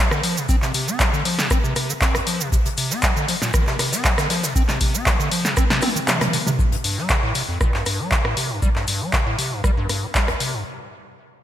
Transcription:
0.11 D3, cross-stick, shaker
0.23 F3, open hi-hat, shaker
0.37 C3, shaker
0.49 C4, kick, shaker
0.62 C3, snare, clap, shaker
0.74 C3, open hi-hat, shaker
0.88 C4, shaker
1.00 F3, kick, snare, clap, shaker
1.13 D3, shaker
1.25 F3, open hi-hat, shaker
1.38 C3, snare, shaker
1.50 C4, kick, cross-stick, shaker
1.64 C3, shaker
1.76 C3, cross-stick, open hi-hat, shaker
1.89 D#3, shaker
2.01 C4, kick, snare, clap, shaker
2.15 C2, cross-stick, closed hi-hat, shaker
2.27 F3, open hi-hat, shaker
2.40 C3, shaker
2.52 C3, kick, shaker
2.65 C3, closed hi-hat, shaker
2.77 C3, open hi-hat, shaker
2.91 C4, snare, shaker
3.02 F3, kick, snare, clap, shaker
3.16 D3, shaker
3.28 F3, snare, open hi-hat, shaker
3.42 A#2, snare, shaker
3.53 D#3, kick, cross-stick, shaker
3.67 C3, snare, clap, shaker
3.79 C3, cross-stick, snare, open hi-hat, shaker
3.93 C4, snare, shaker
4.04 F3, kick, snare, clap, shaker
4.18 D3, cross-stick, snare, shaker
4.30 F3, snare, open hi-hat, shaker
4.43 C3, snare, shaker
4.55 C4, kick, shaker
4.69 C3, snare, clap, shaker
4.81 C3, kick, open hi-hat, shaker
4.94 C4, shaker
5.06 F3, kick, snare, clap, shaker
5.19 D3, shaker
5.32 F3, open hi-hat, shaker
5.45 C3, snare, shaker
5.57 C4, kick, cross-stick, shaker
5.70 C3, snare, shaker
5.82 C4, cross-stick, open hi-hat, high tom, shaker
5.96 D#3, shaker
6.08 C3, snare, clap, mid tom, shaker
6.21 C3, cross-stick, closed hi-hat, mid tom, shaker
6.33 C3, open hi-hat, shaker
6.47 C3, mid tom, shaker
6.59 G2, kick, shaker
6.72 G2, closed hi-hat
6.84 G2, open hi-hat, shaker
6.97 G3, snare
7.09 C3, kick, snare, clap, shaker
7.23 A2
7.35 C3, snare, open hi-hat, shaker
7.48 F2
7.61 A#2, kick, cross-stick, shaker
7.74 G2, snare, clap
7.86 G2, cross-stick, open hi-hat, shaker
7.99 G3
8.11 C3, kick, snare, clap, shaker
8.25 A2, cross-stick
8.37 C3, open hi-hat, shaker
8.50 G2
8.62 G3, kick, shaker
8.75 G2, snare, clap
8.87 G2, open hi-hat, shaker
9.01 G3
9.12 C3, kick, snare, clap, shaker
9.26 A2
9.39 C3, open hi-hat, shaker
9.52 G2
9.64 G3, kick, cross-stick, shaker
9.77 G2
9.89 G2, cross-stick, open hi-hat, shaker
10.03 A#2
10.15 G3, kick, snare, clap, shaker
10.28 G1, cross-stick, closed hi-hat
10.40 C3, open hi-hat, shaker
10.54 G2

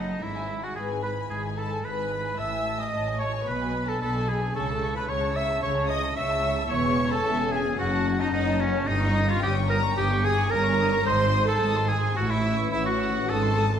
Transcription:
Already playing: F#1 F#2 D#4 A4 D#5
0.05 A3 A5
0.21 G#1 G#2 E4 E5 B5
0.35 G#5
0.40 G#3
0.49 B5
0.58 E4
0.63 F#4 F#5 G#5
0.76 G#1 G#2 G#4 B4 G#5 B5
0.90 G#5
0.95 G#4
1.03 B4 B5
1.12 E4
1.17 G#5
1.30 G#1 G#2 G#4 G#5 B5
1.43 G#5
1.48 G#3
1.57 A4 A5 B5
1.67 E4
1.71 G#5
1.84 G#1 G#2 B4 B5
1.97 G#5
2.02 G#4
2.11 B5
2.20 E4
2.25 G#5
2.38 A1 A2 E5 A5 E6
2.52 G#5
2.56 G#3
2.65 A5
2.74 E4
2.79 D#5 G#5 D#6
2.93 A1 A2 C#5 A5
3.06 G#5
3.11 G#4
3.19 C#5 A5 C#6
3.29 E4
3.33 G#5
3.47 B1 B2 B4 B5
3.60 G#5
3.65 G#3
3.74 B5
3.83 D4
3.87 A4 G#5 A5
4.01 B1 B2 A4 D5 A5 B5
4.14 G#5
4.19 G#4
4.28 G#4 G#5 B5
4.37 D4
4.41 G#5
4.55 C#2 C#3 A4 A5 C#6
4.68 A5
4.74 A3
4.82 C#6
4.92 E4 B4 A5
4.96 B4 B5
5.09 C#2 C#3 C#5 C#6
5.23 A5
5.28 A4
5.35 E5 C#6 E6
5.46 E4
5.50 A5
5.63 C#2 C#3 C#5 C#6
5.77 A5
5.81 A3
5.89 D#5 C#6 D#6
5.99 E4
6.03 A5
6.16 C#2 C#3 C#5 E5 C#6 E6
6.30 A5
6.35 A4
6.43 C#6
6.53 E4 A5
6.70 E1 E2 C#5 E5 C#6
6.84 G#5
6.89 G#3
6.98 E5
7.07 C#4 A4 G#5 A5
7.24 E1 E2 C#5 E5
7.38 G#5
7.43 G#4
7.51 G#4 E5 G#5
7.61 C#4
7.66 G#5
7.78 F#1 F#2 F#4 F#5
7.93 A5
7.98 A3
8.07 F#5
8.15 C#4 D#5
8.20 D#4 A5
8.32 F#1 F#2 D#4 C#5 D#5 F#5
8.47 A5
8.52 A4
8.61 C#4 C#5 F#5
8.70 C#4
8.75 A5
8.87 G1 G2 D#4 D#5 D#6
9.02 C#6
9.07 A#3
9.16 D#6
9.29 F4 F5 C#6
9.42 G1 G2 G4 C#5 G5 D#6
9.56 C#6
9.61 A#4
9.69 A#4 A#5 D#6
9.79 D#4
9.84 C#6
9.97 G1 G2 G4 G5 D#6
10.11 C#6
10.16 A#3
10.24 G#4 G#5 D#6
10.33 D#4
10.38 C#6
10.51 G1 G2 A#4 C#5 A#5 D#6
10.65 C#6
10.70 A#4
10.79 D#6
10.88 D#4 C#6
11.06 G#1 G#2 C5 C6 D#6
11.20 C6
11.33 D#6
11.43 D#4 A4 C6
11.48 A4 A5
11.61 G#1 G#2 C5 D#6
11.75 C6
11.80 G#4
11.89 G#4 G#5 D#6
11.98 D#4 C6
12.16 A1 A2 F#4 F#5 E6
12.29 E4 E5 C#6
12.35 C#4
12.43 E6
12.54 E3 C#6
12.71 A1 A2 E4 C#5 E5 E6
12.85 F#4 F#5 C#6
12.91 C#4
13.00 E6
13.11 E3 C#6
13.29 G#1 G#2 A4 A5 D#6
13.43 C6
13.58 D#6
13.68 D#4
13.73 C6

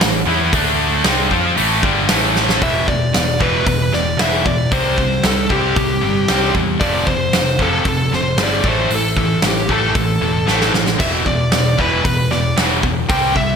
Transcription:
0.01 A1 A2 E3, snare, open hi-hat
0.27 E2 E3 B3 E4
0.53 D2 D3 A3 D4, kick, open hi-hat
1.04 C2 C3 G3 C4, snare, open hi-hat
1.31 F2 F3 C4 F4, kick
1.57 A1 A2 E3 A3, open hi-hat
1.83 G1 G2 D3 G3, kick
2.09 A1 A2 E3 A3, snare, open hi-hat
2.36 snare
2.49 snare
2.61 E1 E2 B2 E3 E5, kick, open hi-hat
2.88 E1 E2 B2 D5, kick
3.14 E1 E2 B2, snare, open hi-hat
3.40 E1 E2 B2 E3 B4, kick
3.65 E1 E2 B2 B4, kick, open hi-hat
3.93 E1 E2 B2 D5, snare
4.19 E1 E2 B2 E3 E5, snare, open hi-hat
4.46 E2 B2 D5, kick
4.71 C2 C3 G3 C4 C5, kick, open hi-hat
4.97 C3 G3, kick
5.23 C2 C3 G3 A4, snare, open hi-hat
5.49 C2 C3 G3 C4 G4, kick
5.76 C2 C3 G3, kick, open hi-hat
6.01 G1 C3 G3
6.28 C2 C3 G3 C4, snare, open hi-hat
6.55 E2 C3 G3, kick
6.79 F1 F2 C3 F3 D5, kick, open hi-hat
7.07 F1 F2 C3 C5, kick
7.32 F1 F2 C3, snare, open hi-hat
7.59 F1 F2 C3 F3 A4, kick
7.85 F1 F2 C3 A4, kick, open hi-hat
8.11 F1 F2 C3 C5, snare
8.37 G1 F2 C3 F3, snare, open hi-hat
8.43 D5
8.64 A1 A2 E3 A3, kick
8.69 C5
8.90 A1 A2 E3, open hi-hat
8.95 A4
9.17 A2 E3, kick
9.42 A1 A2 E3, snare, open hi-hat
9.48 G4
9.69 A1 A2 E3 A3, kick
9.73 A4
9.95 A1 A2 E3, kick, open hi-hat
10.22 E1 A2 E3
10.47 A1 A2 E3 A3, snare
10.61 snare
10.74 A1 A2 E3, snare
10.86 snare
10.98 E1 E2 B2 E3 E5, kick, open hi-hat, splash
11.25 E1 E2 B2 D5, kick
11.51 E1 E2 B2, snare, open hi-hat
11.77 E1 E2 B2 E3 B4, kick
12.04 E1 E2 B2 B4, kick, open hi-hat
12.31 E1 E2 B2 D5, snare
12.57 E1 E2 B2 E3, snare, open hi-hat
12.83 E2 B2, kick
13.09 C2 C3 G3 C4 G5, kick, open hi-hat
13.35 C3 G3 E5, kick

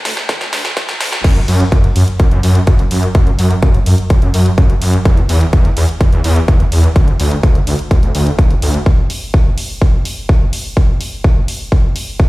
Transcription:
0.05 D2, snare, open hi-hat
0.17 snare, closed hi-hat
0.29 D2, kick, snare, closed hi-hat
0.41 D2, snare, closed hi-hat
0.53 D2, snare, open hi-hat
0.65 snare, closed hi-hat
0.77 D2, kick, snare, closed hi-hat
0.89 snare, closed hi-hat
1.00 D2, snare, open hi-hat
1.13 snare, closed hi-hat
1.24 F#2, kick, closed hi-hat, crash
1.36 closed hi-hat
1.48 F#2, open hi-hat
1.60 closed hi-hat
1.72 F#2, kick, closed hi-hat
1.84 closed hi-hat
1.96 F#2, open hi-hat
2.08 closed hi-hat
2.20 F#2, kick, closed hi-hat
2.31 F#2, closed hi-hat
2.43 F#2, open hi-hat
2.55 closed hi-hat
2.67 F#2, kick, closed hi-hat
2.79 closed hi-hat
2.91 F#2, open hi-hat
3.03 closed hi-hat
3.15 F#2, kick, closed hi-hat
3.27 closed hi-hat
3.39 F#2, open hi-hat
3.51 closed hi-hat
3.62 F#2, kick, closed hi-hat
3.74 closed hi-hat
3.86 F#2, open hi-hat
3.98 closed hi-hat
4.10 F#2, kick, closed hi-hat
4.22 F#2, closed hi-hat
4.34 F#2, open hi-hat
4.46 closed hi-hat
4.58 F#2, kick, closed hi-hat
4.70 closed hi-hat
4.82 F#2, open hi-hat
4.94 closed hi-hat
5.05 E2, kick, closed hi-hat
5.17 closed hi-hat
5.29 E2, open hi-hat
5.41 closed hi-hat
5.53 E2, kick, closed hi-hat
5.65 closed hi-hat
5.77 E2, open hi-hat
5.89 closed hi-hat
6.01 E2, kick, closed hi-hat
6.12 E2, closed hi-hat
6.24 E2, open hi-hat
6.36 closed hi-hat
6.48 E2, kick, closed hi-hat
6.60 closed hi-hat
6.72 E2, open hi-hat
6.84 closed hi-hat
6.96 D2, kick, closed hi-hat
7.08 closed hi-hat
7.20 D2, open hi-hat
7.32 closed hi-hat
7.43 D2, kick, closed hi-hat
7.55 closed hi-hat
7.67 D2, open hi-hat
7.79 closed hi-hat
7.91 D2, kick, closed hi-hat
8.03 D2, closed hi-hat
8.15 D2, open hi-hat
8.27 closed hi-hat
8.39 D1, kick, closed hi-hat
8.50 closed hi-hat
8.62 D2, open hi-hat
8.74 closed hi-hat
8.86 kick
9.10 open hi-hat
9.34 kick
9.58 open hi-hat
9.82 kick
10.05 open hi-hat
10.29 kick
10.53 open hi-hat
10.77 kick
11.01 open hi-hat
11.24 kick
11.48 open hi-hat
11.72 kick
11.96 open hi-hat
12.20 kick

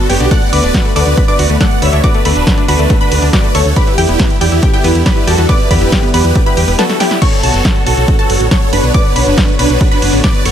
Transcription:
Already playing: D3 B3 D4 F#4
0.09 F#1 B3 G4 C#5 G5, open hi-hat
0.20 B1 D4, closed hi-hat
0.31 A3 D5 F#5 F#6, kick, closed hi-hat, ride
0.42 closed hi-hat
0.53 D2 B4 D5 D6, open hi-hat, ride
0.63 D1 D4, closed hi-hat
0.74 F#4, kick, snare, closed hi-hat, ride
0.85 A3, closed hi-hat
0.96 D2 A3 B4 D5 D6, open hi-hat, ride
1.07 D2, closed hi-hat
1.17 B4, kick, closed hi-hat, ride
1.28 D4 B4 D5 D6, closed hi-hat
1.39 D2 F#4, open hi-hat, ride
1.50 D2 A3, closed hi-hat
1.61 A3 D5 F#5 F#6, kick, snare, closed hi-hat, ride
1.71 closed hi-hat
1.82 D2 B4 C#5 E5 E6, open hi-hat, ride
1.93 D2 D4, closed hi-hat
2.04 F#4 B4 D5 D6, kick, closed hi-hat, ride
2.14 A3, closed hi-hat
2.25 D2 A3 D4 B4 B5, open hi-hat, ride
2.36 D1, closed hi-hat
2.47 B4, kick, snare, closed hi-hat, ride
2.58 D4, closed hi-hat
2.68 D2 D4 F#4 B4 B5, open hi-hat, ride
2.79 D2 A3, closed hi-hat
2.90 A3, kick, closed hi-hat, ride
3.01 D4 B4 B5, closed hi-hat
3.12 D2 B4, open hi-hat, ride
3.22 D2 D4, open hi-hat
3.33 F#4 B4 D5 D6, kick, snare, closed hi-hat, ride
3.44 A3, closed hi-hat
3.55 D2 A3 A4 C#5 C#6, open hi-hat, ride
3.65 D2, closed hi-hat
3.76 D3 G3 B3 E4 G4 B4 D5 B5, kick, closed hi-hat, ride
3.87 E4, closed hi-hat
3.98 E2 E4 G4 G5, open hi-hat, ride
4.09 E1 B3, closed hi-hat
4.19 B3, kick, snare, closed hi-hat, ride
4.30 closed hi-hat
4.41 E2 E4 G4 D5 G5, open hi-hat, ride
4.52 E2 E4, closed hi-hat
4.63 G4, kick, closed hi-hat, ride
4.73 B3 E4 G4 G5, closed hi-hat
4.84 E2 B3, open hi-hat, ride
4.95 E2, closed hi-hat
5.06 G4 B4 D5 B5, kick, snare, closed hi-hat, ride
5.17 E4, closed hi-hat
5.27 E2 F#4 G4 A4 A5, open hi-hat, ride
5.38 E2 B3, closed hi-hat
5.49 B3 B4 D5 D6, kick, closed hi-hat, ride
5.60 closed hi-hat
5.71 E2 G4 B4 D5 B5, kick, open hi-hat, ride
5.81 E1 E4, closed hi-hat
5.92 G4, kick, snare, closed hi-hat, ride
6.03 B3, closed hi-hat
6.14 E2 B3 G4 B4 B5, open hi-hat, ride
6.25 E2, closed hi-hat
6.35 D5, kick, closed hi-hat, ride
6.46 E4 G4 B4 B5, closed hi-hat
6.57 E2 G4, open hi-hat, ride
6.68 E1 B3, open hi-hat
6.79 B3 F#4 A4 A5, snare, closed hi-hat, ride
6.90 snare, closed hi-hat
7.00 E4 G4 D5 G5, snare, open hi-hat, ride
7.11 E4, snare, closed hi-hat
7.22 D3 B3 F#4 A4 C#5 C#6, kick, closed hi-hat, crash, ride
7.33 closed hi-hat
7.43 B1 F#4 A4 A5, open hi-hat, ride
7.54 F#1, closed hi-hat
7.65 kick, snare, closed hi-hat, ride
7.76 closed hi-hat
7.86 B1 F#4 A4 A5, open hi-hat, ride
7.97 B1, closed hi-hat
8.08 kick, closed hi-hat, ride
8.19 F#4 A4 A5, closed hi-hat
8.30 F#1, open hi-hat, ride
8.40 A1, closed hi-hat
8.51 A4 C#5 C#6, kick, snare, closed hi-hat, ride
8.62 closed hi-hat
8.73 F#1 D4 B4 B5, open hi-hat, ride
8.84 B1, closed hi-hat
8.94 B4 D5 D6, kick, closed hi-hat, ride
9.05 closed hi-hat
9.16 B1 D4 B4 B5, open hi-hat, ride
9.27 F#1, closed hi-hat
9.38 kick, snare, closed hi-hat, ride
9.48 closed hi-hat
9.59 B1 D4 B4 B5, open hi-hat, ride
9.70 B1, closed hi-hat
9.81 kick, closed hi-hat, ride
9.91 D4 B4 B5, closed hi-hat
10.02 F#1, open hi-hat, ride
10.13 A1, open hi-hat
10.24 B4 D5 D6, kick, snare, closed hi-hat, ride
10.35 closed hi-hat
10.45 F#1 A4 C#5 C#6, open hi-hat, ride

